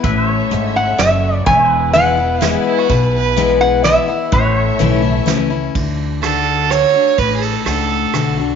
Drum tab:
RD |------|------|------|------|
HH |x-x-x-|x-x-x-|x-x-x-|x-x-x-|
SD |----o-|----o-|----o-|----o-|
BD |o-----|o-----|o-----|o-----|

RD |x-x-x-|xxx-x-|
HH |------|------|
SD |--r-r-|--r-r-|
BD |o-----|o-----|